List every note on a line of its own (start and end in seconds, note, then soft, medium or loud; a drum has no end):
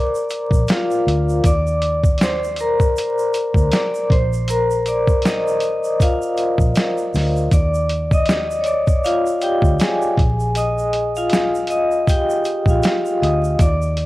0.00 1.45 A#4 medium
0.00 1.45 C5 medium
0.00 0.72 D5 medium
0.00 1.45 A#5 medium
0.00 1.46 C6 medium
0.00 0.65 D6 medium
0.15 shaker medium
0.30 closed hi-hat medium
0.30 shaker soft
0.51 0.66 A#1 medium
0.51 kick medium
0.51 shaker medium
0.68 1.41 F4 medium
0.68 1.47 F5 medium
0.68 snare loud
0.68 closed hi-hat medium
0.68 shaker medium
0.91 shaker soft
1.07 1.40 D2 medium
1.07 closed hi-hat medium
1.29 shaker soft
1.44 2.92 D#2 loud
1.44 2.17 D5 loud
1.44 2.17 D6 medium
1.44 kick loud
1.44 closed hi-hat medium
1.44 shaker medium
1.67 shaker soft
1.82 closed hi-hat medium
2.04 kick medium
2.04 shaker medium
2.18 snare loud
2.18 closed hi-hat medium
2.18 shaker medium
2.23 2.57 C5 medium
2.23 2.57 C6 medium
2.44 shaker soft
2.56 closed hi-hat medium
2.56 shaker soft
2.60 3.77 A#4 loud
2.60 3.69 A#5 medium
2.80 kick medium
2.80 shaker soft
2.97 closed hi-hat medium
2.97 shaker medium
3.19 shaker medium
3.34 closed hi-hat medium
3.34 shaker medium
3.54 3.69 D2 medium
3.54 kick medium
3.54 shaker soft
3.72 4.12 D5 loud
3.72 4.08 D6 medium
3.72 snare medium
3.72 closed hi-hat medium
3.72 shaker medium
3.95 shaker medium
4.10 5.79 A#1 medium
4.10 4.50 C5 medium
4.10 4.46 C6 medium
4.10 kick loud
4.10 closed hi-hat medium
4.33 shaker soft
4.48 4.84 A#4 medium
4.48 4.84 A#5 medium
4.48 closed hi-hat medium
4.48 shaker medium
4.71 shaker medium
4.86 5.22 D5 medium
4.86 5.22 D6 medium
4.86 closed hi-hat medium
4.86 shaker soft
5.08 kick medium
5.08 shaker soft
5.22 5.97 D#6 medium
5.22 snare medium
5.22 closed hi-hat medium
5.22 shaker medium
5.26 6.03 D#5 loud
5.48 shaker soft
5.60 closed hi-hat medium
5.60 shaker soft
5.84 shaker soft
6.00 7.11 F4 medium
6.00 7.11 F5 loud
6.00 kick loud
6.00 closed hi-hat loud
6.00 shaker medium
6.22 shaker medium
6.37 closed hi-hat medium
6.37 shaker soft
6.58 6.73 A#1 medium
6.58 kick medium
6.58 shaker soft
6.75 snare loud
6.75 closed hi-hat medium
6.75 shaker medium
6.98 shaker medium
7.14 7.48 D2 medium
7.14 snare soft
7.14 open hi-hat soft
7.14 shaker soft
7.37 shaker soft
7.51 9.00 D#2 loud
7.51 8.09 D5 medium
7.51 8.09 D6 medium
7.51 kick loud
7.51 closed hi-hat medium
7.51 shaker medium
7.74 shaker soft
7.89 closed hi-hat medium
8.11 8.62 D#5 medium
8.11 8.58 D#6 medium
8.11 kick medium
8.11 shaker soft
8.26 snare loud
8.26 closed hi-hat medium
8.26 shaker medium
8.51 shaker medium
8.61 8.66 C#5 medium
8.61 closed hi-hat medium
8.66 9.05 D5 medium
8.66 9.02 D6 medium
8.66 shaker soft
8.87 kick medium
8.87 shaker medium
9.04 9.40 F4 medium
9.04 9.39 F5 loud
9.04 closed hi-hat medium
9.04 shaker medium
9.26 shaker medium
9.41 9.78 G4 medium
9.41 9.81 G5 loud
9.41 closed hi-hat medium
9.41 shaker soft
9.62 9.77 D2 medium
9.62 kick medium
9.62 shaker soft
9.79 10.37 G#4 medium
9.79 10.36 G#5 medium
9.79 snare loud
9.79 closed hi-hat medium
9.79 shaker medium
10.02 shaker soft
10.17 11.87 A#1 medium
10.17 kick loud
10.17 closed hi-hat medium
10.40 shaker soft
10.55 11.12 D#5 loud
10.55 11.13 D#6 medium
10.55 closed hi-hat medium
10.55 shaker medium
10.78 shaker soft
10.93 closed hi-hat medium
11.16 11.67 F4 medium
11.16 11.71 F5 loud
11.16 shaker medium
11.30 snare medium
11.30 closed hi-hat medium
11.30 shaker medium
11.55 shaker medium
11.67 12.05 D#5 loud
11.67 closed hi-hat medium
11.67 shaker medium
11.72 12.06 D#6 medium
11.92 shaker soft
12.07 12.65 G4 medium
12.07 12.70 G5 loud
12.07 kick medium
12.07 closed hi-hat medium
12.07 shaker medium
12.30 shaker medium
12.45 closed hi-hat medium
12.45 shaker soft
12.66 12.81 A#1 medium
12.66 12.84 F5 medium
12.66 kick medium
12.66 shaker soft
12.70 12.84 F4 medium
12.83 13.20 F4 medium
12.83 13.20 F5 medium
12.83 snare loud
12.83 closed hi-hat medium
12.83 shaker medium
13.06 shaker soft
13.22 13.56 D2 medium
13.22 13.57 D#5 medium
13.22 13.58 D#6 medium
13.22 closed hi-hat medium
13.44 shaker soft
13.59 14.06 D#2 loud
13.59 14.06 D5 medium
13.59 14.06 D6 medium
13.59 kick loud
13.59 closed hi-hat medium
13.59 shaker medium
13.82 shaker soft
13.97 closed hi-hat medium